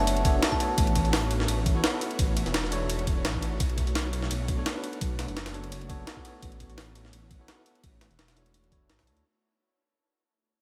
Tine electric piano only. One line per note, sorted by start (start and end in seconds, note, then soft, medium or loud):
0.00 0.22 B3 loud
0.00 0.22 D4 medium
0.00 0.23 F#4 medium
0.00 0.23 A4 medium
0.00 0.23 C#5 loud
0.24 0.56 B3 medium
0.24 0.58 D4 medium
0.24 0.58 F#4 medium
0.24 0.58 A4 medium
0.24 0.59 C#5 loud
0.58 1.72 B3 medium
0.58 1.73 E4 medium
0.58 1.73 F#4 medium
0.58 1.74 A4 medium
0.63 1.74 C#5 medium
1.74 1.90 B3 medium
1.74 1.91 E4 medium
1.74 1.91 F#4 medium
1.74 1.91 A4 medium
1.74 1.91 C#5 loud
1.92 2.17 B3 medium
1.92 2.18 E4 medium
1.92 2.18 F#4 medium
1.92 2.18 A4 medium
1.92 2.19 B4 medium
2.71 3.04 D4 medium
2.71 3.05 E4 medium
2.71 3.05 F#4 medium
2.71 3.05 A4 medium
2.71 3.06 C#5 loud
3.15 3.24 D4 medium
3.15 3.25 E4 medium
3.15 3.25 F#4 medium
3.15 3.25 A4 medium
3.15 3.26 C#5 medium
3.41 3.57 D4 medium
3.41 3.57 E4 medium
3.41 3.57 F#4 medium
3.41 3.57 A4 medium
3.41 3.58 C#5 medium
4.56 4.72 B3 medium
4.56 4.73 D4 medium
4.56 4.73 F#4 medium
4.56 4.73 A4 medium
4.56 4.74 C#5 medium
4.73 5.51 B3 medium
4.73 5.52 D4 medium
4.73 5.52 F#4 medium
4.73 5.53 A4 medium
4.78 5.53 B4 medium
5.53 5.87 B3 medium
5.53 5.87 D4 medium
5.53 5.87 F#4 medium
5.53 5.88 A4 medium
5.53 5.88 C#5 loud
5.88 6.21 B3 medium
5.88 6.22 D4 medium
5.88 6.23 F#4 medium
5.88 6.23 A4 medium
5.88 6.23 C#5 loud
6.22 7.37 B3 medium
6.22 7.37 E4 medium
6.22 7.38 F#4 medium
6.22 7.38 A4 medium
6.27 7.39 C#5 medium
7.39 7.55 B3 medium
7.39 7.55 E4 medium
7.39 7.55 F#4 medium
7.39 7.56 A4 medium
7.39 7.56 C#5 medium
7.56 7.82 B3 medium
7.56 7.82 E4 medium
7.56 7.83 F#4 medium
7.56 7.83 A4 medium
7.56 7.83 B4 medium
8.35 8.69 D4 medium
8.35 8.70 E4 medium
8.35 8.70 F#4 medium
8.35 8.70 A4 medium
8.35 8.70 C#5 loud
8.71 9.04 D4 medium
8.71 9.05 E4 medium
8.71 9.05 F#4 medium
8.71 9.05 A4 medium
8.71 9.06 C#5 medium
9.06 9.23 D4 medium
9.06 9.23 E4 medium
9.06 9.24 F#4 medium
9.06 9.24 A4 medium
9.06 9.24 C#5 medium